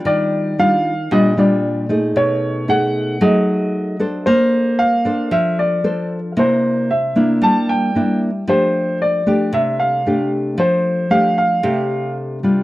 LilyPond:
<<
  \new Staff \with { instrumentName = "Grand piano" } { \time 4/4 \key f \major \tempo 4 = 114 d''4 f''4 ees''8 d''4 r8 | cis''4 fis''4 dis''4. r8 | c''4 f''4 e''8 d''4 r8 | c''4 e''4 a''8 g''4 r8 |
c''4 d''4 e''8 f''4 r8 | c''4 f''8 f''4. r4 | }
  \new Staff \with { instrumentName = "Nylon-string guitar" } { \time 4/4 \key f \major << { <g d' f'>4 <g d' f'>8 r8 <g d' f'>8 <g d' f'>4 <a ees' aes'>8~ | <a ees' aes'>4 <a dis' gis'>4 <a dis' gis'>4. <d' a' c''>8~ | <d' a' c''>4 r8 <d' a' c''>4. <d' a' c''>8 r8 | <bes d' e'>4 r8 <bes d' e'>4. <bes d' e'>8 r8 |
<a d' g'>4. <a d' g'>4. <a d' g'>4~ | <a d' g'>4 <a d' g'>4 <a d' g'>4. <g d' f'>8 | } \\ { ees2 bes,2 | b,2 fis2 | bes2 f2 | c2 g2 |
f2 c2 | f2 c2 | } >> }
>>